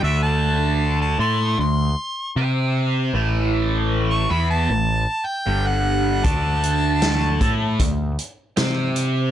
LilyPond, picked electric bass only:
\new Staff \with { instrumentName = "Picked electric bass" } { \clef bass \time 4/4 \key d \major \tempo 4 = 77 d,4. a,8 d,8 r8 c4 | a,,4. e,8 a,,8 r8 g,,4 | d,4. a,8 d,8 r8 c4 | }